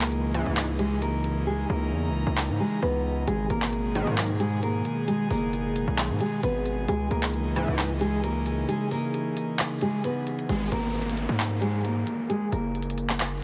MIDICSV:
0, 0, Header, 1, 7, 480
1, 0, Start_track
1, 0, Tempo, 451128
1, 1565, Time_signature, 4, 2, 24, 8
1, 14297, End_track
2, 0, Start_track
2, 0, Title_t, "Nylon-string guitar"
2, 0, Program_c, 0, 24
2, 0, Note_on_c, 0, 58, 67
2, 0, Note_on_c, 0, 70, 91
2, 800, Note_off_c, 0, 70, 0
2, 805, Note_off_c, 0, 58, 0
2, 842, Note_on_c, 0, 68, 89
2, 850, Note_on_c, 0, 56, 72
2, 1029, Note_off_c, 0, 68, 0
2, 1034, Note_off_c, 0, 56, 0
2, 1085, Note_on_c, 0, 70, 80
2, 1093, Note_on_c, 0, 58, 63
2, 1536, Note_off_c, 0, 70, 0
2, 1541, Note_off_c, 0, 58, 0
2, 1562, Note_on_c, 0, 68, 82
2, 1570, Note_on_c, 0, 56, 65
2, 1749, Note_off_c, 0, 68, 0
2, 1754, Note_off_c, 0, 56, 0
2, 1806, Note_on_c, 0, 70, 78
2, 1814, Note_on_c, 0, 58, 66
2, 2723, Note_off_c, 0, 70, 0
2, 2727, Note_off_c, 0, 58, 0
2, 2769, Note_on_c, 0, 68, 78
2, 2777, Note_on_c, 0, 56, 64
2, 2953, Note_off_c, 0, 68, 0
2, 2959, Note_off_c, 0, 56, 0
2, 3006, Note_on_c, 0, 71, 87
2, 3015, Note_on_c, 0, 59, 66
2, 3457, Note_off_c, 0, 71, 0
2, 3462, Note_off_c, 0, 59, 0
2, 3483, Note_on_c, 0, 68, 87
2, 3492, Note_on_c, 0, 56, 72
2, 3669, Note_off_c, 0, 68, 0
2, 3675, Note_off_c, 0, 56, 0
2, 3725, Note_on_c, 0, 70, 87
2, 3734, Note_on_c, 0, 58, 70
2, 4643, Note_off_c, 0, 70, 0
2, 4647, Note_off_c, 0, 58, 0
2, 4677, Note_on_c, 0, 68, 88
2, 4686, Note_on_c, 0, 56, 71
2, 4866, Note_off_c, 0, 68, 0
2, 4872, Note_off_c, 0, 56, 0
2, 4924, Note_on_c, 0, 70, 79
2, 4933, Note_on_c, 0, 58, 62
2, 5376, Note_off_c, 0, 70, 0
2, 5381, Note_off_c, 0, 58, 0
2, 5401, Note_on_c, 0, 68, 80
2, 5410, Note_on_c, 0, 56, 66
2, 5588, Note_off_c, 0, 68, 0
2, 5594, Note_off_c, 0, 56, 0
2, 5651, Note_on_c, 0, 70, 81
2, 5659, Note_on_c, 0, 58, 69
2, 6566, Note_off_c, 0, 70, 0
2, 6570, Note_off_c, 0, 58, 0
2, 6605, Note_on_c, 0, 68, 81
2, 6614, Note_on_c, 0, 56, 66
2, 6791, Note_off_c, 0, 68, 0
2, 6796, Note_off_c, 0, 56, 0
2, 6844, Note_on_c, 0, 71, 85
2, 6853, Note_on_c, 0, 59, 70
2, 7296, Note_off_c, 0, 71, 0
2, 7301, Note_off_c, 0, 59, 0
2, 7326, Note_on_c, 0, 68, 88
2, 7335, Note_on_c, 0, 56, 66
2, 7512, Note_off_c, 0, 68, 0
2, 7517, Note_off_c, 0, 56, 0
2, 7560, Note_on_c, 0, 70, 89
2, 7568, Note_on_c, 0, 58, 64
2, 8480, Note_off_c, 0, 70, 0
2, 8484, Note_off_c, 0, 58, 0
2, 8521, Note_on_c, 0, 68, 92
2, 8529, Note_on_c, 0, 56, 76
2, 8708, Note_off_c, 0, 68, 0
2, 8713, Note_off_c, 0, 56, 0
2, 8763, Note_on_c, 0, 70, 79
2, 8771, Note_on_c, 0, 58, 64
2, 9216, Note_off_c, 0, 70, 0
2, 9220, Note_off_c, 0, 58, 0
2, 9241, Note_on_c, 0, 68, 83
2, 9249, Note_on_c, 0, 56, 62
2, 9428, Note_off_c, 0, 68, 0
2, 9434, Note_off_c, 0, 56, 0
2, 9486, Note_on_c, 0, 70, 74
2, 9494, Note_on_c, 0, 58, 64
2, 10403, Note_off_c, 0, 70, 0
2, 10408, Note_off_c, 0, 58, 0
2, 10450, Note_on_c, 0, 68, 80
2, 10459, Note_on_c, 0, 56, 61
2, 10634, Note_off_c, 0, 68, 0
2, 10639, Note_off_c, 0, 56, 0
2, 10686, Note_on_c, 0, 71, 87
2, 10694, Note_on_c, 0, 59, 66
2, 11137, Note_off_c, 0, 71, 0
2, 11142, Note_off_c, 0, 59, 0
2, 11162, Note_on_c, 0, 68, 88
2, 11172, Note_on_c, 0, 56, 65
2, 11349, Note_off_c, 0, 68, 0
2, 11355, Note_off_c, 0, 56, 0
2, 11405, Note_on_c, 0, 70, 88
2, 11414, Note_on_c, 0, 58, 66
2, 12323, Note_off_c, 0, 70, 0
2, 12327, Note_off_c, 0, 58, 0
2, 12357, Note_on_c, 0, 68, 88
2, 12365, Note_on_c, 0, 56, 67
2, 12546, Note_off_c, 0, 68, 0
2, 12551, Note_off_c, 0, 56, 0
2, 12604, Note_on_c, 0, 70, 76
2, 12613, Note_on_c, 0, 58, 61
2, 13056, Note_off_c, 0, 70, 0
2, 13061, Note_off_c, 0, 58, 0
2, 13082, Note_on_c, 0, 68, 80
2, 13090, Note_on_c, 0, 56, 63
2, 13269, Note_off_c, 0, 68, 0
2, 13274, Note_off_c, 0, 56, 0
2, 13331, Note_on_c, 0, 70, 79
2, 13340, Note_on_c, 0, 58, 69
2, 14246, Note_off_c, 0, 70, 0
2, 14250, Note_off_c, 0, 58, 0
2, 14297, End_track
3, 0, Start_track
3, 0, Title_t, "Analog synth pad"
3, 0, Program_c, 1, 89
3, 0, Note_on_c, 1, 49, 81
3, 0, Note_on_c, 1, 52, 76
3, 0, Note_on_c, 1, 63, 74
3, 0, Note_on_c, 1, 68, 92
3, 1523, Note_off_c, 1, 68, 0
3, 1566, Note_on_c, 1, 82, 90
3, 3447, Note_off_c, 1, 49, 0
3, 3447, Note_off_c, 1, 52, 0
3, 3447, Note_off_c, 1, 63, 0
3, 3467, Note_off_c, 1, 82, 0
3, 3487, Note_on_c, 1, 47, 74
3, 3487, Note_on_c, 1, 51, 81
3, 3487, Note_on_c, 1, 56, 75
3, 3487, Note_on_c, 1, 68, 91
3, 7288, Note_off_c, 1, 47, 0
3, 7288, Note_off_c, 1, 51, 0
3, 7288, Note_off_c, 1, 56, 0
3, 7327, Note_on_c, 1, 49, 84
3, 7327, Note_on_c, 1, 52, 75
3, 7327, Note_on_c, 1, 63, 76
3, 11124, Note_off_c, 1, 68, 0
3, 11128, Note_off_c, 1, 49, 0
3, 11128, Note_off_c, 1, 52, 0
3, 11128, Note_off_c, 1, 63, 0
3, 14297, End_track
4, 0, Start_track
4, 0, Title_t, "Analog polysynth"
4, 0, Program_c, 2, 90
4, 365, Note_on_c, 2, 37, 97
4, 365, Note_on_c, 2, 44, 96
4, 365, Note_on_c, 2, 52, 111
4, 714, Note_off_c, 2, 37, 0
4, 714, Note_off_c, 2, 44, 0
4, 714, Note_off_c, 2, 52, 0
4, 4205, Note_on_c, 2, 44, 95
4, 4206, Note_on_c, 2, 35, 104
4, 4206, Note_on_c, 2, 51, 102
4, 4554, Note_off_c, 2, 35, 0
4, 4554, Note_off_c, 2, 44, 0
4, 4555, Note_off_c, 2, 51, 0
4, 8045, Note_on_c, 2, 37, 94
4, 8045, Note_on_c, 2, 44, 101
4, 8045, Note_on_c, 2, 52, 109
4, 8394, Note_off_c, 2, 37, 0
4, 8394, Note_off_c, 2, 44, 0
4, 8394, Note_off_c, 2, 52, 0
4, 14297, End_track
5, 0, Start_track
5, 0, Title_t, "808-style bass"
5, 0, Program_c, 3, 38
5, 0, Note_on_c, 3, 37, 106
5, 468, Note_off_c, 3, 37, 0
5, 492, Note_on_c, 3, 37, 106
5, 1763, Note_off_c, 3, 37, 0
5, 1806, Note_on_c, 3, 37, 109
5, 2046, Note_on_c, 3, 40, 98
5, 2062, Note_off_c, 3, 37, 0
5, 2229, Note_on_c, 3, 37, 96
5, 2245, Note_off_c, 3, 40, 0
5, 2403, Note_off_c, 3, 37, 0
5, 2412, Note_on_c, 3, 37, 113
5, 2653, Note_on_c, 3, 44, 101
5, 2669, Note_off_c, 3, 37, 0
5, 2760, Note_off_c, 3, 44, 0
5, 3005, Note_on_c, 3, 37, 112
5, 3466, Note_off_c, 3, 37, 0
5, 3485, Note_on_c, 3, 32, 115
5, 3716, Note_off_c, 3, 32, 0
5, 3725, Note_on_c, 3, 32, 108
5, 4308, Note_off_c, 3, 32, 0
5, 4331, Note_on_c, 3, 44, 105
5, 5132, Note_off_c, 3, 44, 0
5, 5645, Note_on_c, 3, 30, 109
5, 6228, Note_off_c, 3, 30, 0
5, 6252, Note_on_c, 3, 35, 114
5, 6492, Note_on_c, 3, 44, 101
5, 6508, Note_off_c, 3, 35, 0
5, 6600, Note_off_c, 3, 44, 0
5, 6845, Note_on_c, 3, 32, 112
5, 7306, Note_off_c, 3, 32, 0
5, 7324, Note_on_c, 3, 37, 111
5, 7555, Note_off_c, 3, 37, 0
5, 7565, Note_on_c, 3, 37, 106
5, 8148, Note_off_c, 3, 37, 0
5, 8172, Note_on_c, 3, 37, 104
5, 9203, Note_off_c, 3, 37, 0
5, 11165, Note_on_c, 3, 32, 108
5, 11396, Note_off_c, 3, 32, 0
5, 11405, Note_on_c, 3, 32, 102
5, 11988, Note_off_c, 3, 32, 0
5, 12012, Note_on_c, 3, 44, 101
5, 12812, Note_off_c, 3, 44, 0
5, 13326, Note_on_c, 3, 30, 103
5, 14297, Note_off_c, 3, 30, 0
5, 14297, End_track
6, 0, Start_track
6, 0, Title_t, "Downlifter"
6, 0, Program_c, 4, 103
6, 11165, Note_on_c, 4, 60, 82
6, 14297, Note_off_c, 4, 60, 0
6, 14297, End_track
7, 0, Start_track
7, 0, Title_t, "Drums"
7, 13, Note_on_c, 9, 39, 71
7, 119, Note_off_c, 9, 39, 0
7, 127, Note_on_c, 9, 42, 67
7, 233, Note_off_c, 9, 42, 0
7, 367, Note_on_c, 9, 42, 86
7, 474, Note_off_c, 9, 42, 0
7, 606, Note_on_c, 9, 39, 117
7, 608, Note_on_c, 9, 42, 82
7, 712, Note_off_c, 9, 39, 0
7, 714, Note_off_c, 9, 42, 0
7, 843, Note_on_c, 9, 42, 77
7, 949, Note_off_c, 9, 42, 0
7, 1085, Note_on_c, 9, 42, 81
7, 1191, Note_off_c, 9, 42, 0
7, 1322, Note_on_c, 9, 42, 67
7, 1428, Note_off_c, 9, 42, 0
7, 2526, Note_on_c, 9, 39, 113
7, 2632, Note_off_c, 9, 39, 0
7, 3485, Note_on_c, 9, 42, 86
7, 3592, Note_off_c, 9, 42, 0
7, 3725, Note_on_c, 9, 42, 70
7, 3831, Note_off_c, 9, 42, 0
7, 3853, Note_on_c, 9, 39, 73
7, 3959, Note_off_c, 9, 39, 0
7, 3967, Note_on_c, 9, 42, 67
7, 4073, Note_off_c, 9, 42, 0
7, 4207, Note_on_c, 9, 42, 86
7, 4314, Note_off_c, 9, 42, 0
7, 4445, Note_on_c, 9, 39, 117
7, 4447, Note_on_c, 9, 42, 81
7, 4552, Note_off_c, 9, 39, 0
7, 4554, Note_off_c, 9, 42, 0
7, 4683, Note_on_c, 9, 42, 78
7, 4789, Note_off_c, 9, 42, 0
7, 4925, Note_on_c, 9, 42, 78
7, 5032, Note_off_c, 9, 42, 0
7, 5162, Note_on_c, 9, 42, 70
7, 5268, Note_off_c, 9, 42, 0
7, 5406, Note_on_c, 9, 42, 85
7, 5512, Note_off_c, 9, 42, 0
7, 5645, Note_on_c, 9, 46, 71
7, 5752, Note_off_c, 9, 46, 0
7, 5887, Note_on_c, 9, 42, 69
7, 5994, Note_off_c, 9, 42, 0
7, 6127, Note_on_c, 9, 42, 85
7, 6234, Note_off_c, 9, 42, 0
7, 6366, Note_on_c, 9, 39, 118
7, 6368, Note_on_c, 9, 42, 79
7, 6473, Note_off_c, 9, 39, 0
7, 6474, Note_off_c, 9, 42, 0
7, 6603, Note_on_c, 9, 42, 79
7, 6709, Note_off_c, 9, 42, 0
7, 6845, Note_on_c, 9, 42, 83
7, 6952, Note_off_c, 9, 42, 0
7, 7082, Note_on_c, 9, 42, 68
7, 7188, Note_off_c, 9, 42, 0
7, 7325, Note_on_c, 9, 42, 86
7, 7431, Note_off_c, 9, 42, 0
7, 7565, Note_on_c, 9, 42, 73
7, 7672, Note_off_c, 9, 42, 0
7, 7692, Note_on_c, 9, 39, 70
7, 7799, Note_off_c, 9, 39, 0
7, 7806, Note_on_c, 9, 42, 67
7, 7913, Note_off_c, 9, 42, 0
7, 8047, Note_on_c, 9, 42, 82
7, 8154, Note_off_c, 9, 42, 0
7, 8286, Note_on_c, 9, 39, 121
7, 8287, Note_on_c, 9, 42, 78
7, 8392, Note_off_c, 9, 39, 0
7, 8394, Note_off_c, 9, 42, 0
7, 8522, Note_on_c, 9, 42, 76
7, 8629, Note_off_c, 9, 42, 0
7, 8765, Note_on_c, 9, 42, 78
7, 8871, Note_off_c, 9, 42, 0
7, 9001, Note_on_c, 9, 42, 72
7, 9108, Note_off_c, 9, 42, 0
7, 9245, Note_on_c, 9, 42, 89
7, 9351, Note_off_c, 9, 42, 0
7, 9484, Note_on_c, 9, 46, 70
7, 9591, Note_off_c, 9, 46, 0
7, 9726, Note_on_c, 9, 42, 71
7, 9833, Note_off_c, 9, 42, 0
7, 9967, Note_on_c, 9, 42, 87
7, 10073, Note_off_c, 9, 42, 0
7, 10205, Note_on_c, 9, 39, 115
7, 10207, Note_on_c, 9, 42, 80
7, 10312, Note_off_c, 9, 39, 0
7, 10313, Note_off_c, 9, 42, 0
7, 10442, Note_on_c, 9, 42, 74
7, 10549, Note_off_c, 9, 42, 0
7, 10685, Note_on_c, 9, 42, 81
7, 10792, Note_off_c, 9, 42, 0
7, 10926, Note_on_c, 9, 42, 61
7, 11032, Note_off_c, 9, 42, 0
7, 11053, Note_on_c, 9, 42, 63
7, 11160, Note_off_c, 9, 42, 0
7, 11166, Note_on_c, 9, 42, 84
7, 11272, Note_off_c, 9, 42, 0
7, 11405, Note_on_c, 9, 42, 69
7, 11512, Note_off_c, 9, 42, 0
7, 11646, Note_on_c, 9, 42, 42
7, 11726, Note_off_c, 9, 42, 0
7, 11726, Note_on_c, 9, 42, 55
7, 11806, Note_off_c, 9, 42, 0
7, 11806, Note_on_c, 9, 42, 76
7, 11888, Note_off_c, 9, 42, 0
7, 11888, Note_on_c, 9, 42, 86
7, 11994, Note_off_c, 9, 42, 0
7, 12127, Note_on_c, 9, 39, 113
7, 12128, Note_on_c, 9, 42, 78
7, 12233, Note_off_c, 9, 39, 0
7, 12235, Note_off_c, 9, 42, 0
7, 12364, Note_on_c, 9, 42, 74
7, 12470, Note_off_c, 9, 42, 0
7, 12606, Note_on_c, 9, 42, 78
7, 12712, Note_off_c, 9, 42, 0
7, 12843, Note_on_c, 9, 42, 71
7, 12949, Note_off_c, 9, 42, 0
7, 13086, Note_on_c, 9, 42, 84
7, 13193, Note_off_c, 9, 42, 0
7, 13326, Note_on_c, 9, 42, 69
7, 13432, Note_off_c, 9, 42, 0
7, 13567, Note_on_c, 9, 42, 42
7, 13646, Note_off_c, 9, 42, 0
7, 13646, Note_on_c, 9, 42, 55
7, 13726, Note_off_c, 9, 42, 0
7, 13726, Note_on_c, 9, 42, 75
7, 13808, Note_off_c, 9, 42, 0
7, 13808, Note_on_c, 9, 42, 82
7, 13914, Note_off_c, 9, 42, 0
7, 13933, Note_on_c, 9, 39, 68
7, 14039, Note_off_c, 9, 39, 0
7, 14046, Note_on_c, 9, 39, 114
7, 14048, Note_on_c, 9, 42, 78
7, 14153, Note_off_c, 9, 39, 0
7, 14154, Note_off_c, 9, 42, 0
7, 14297, End_track
0, 0, End_of_file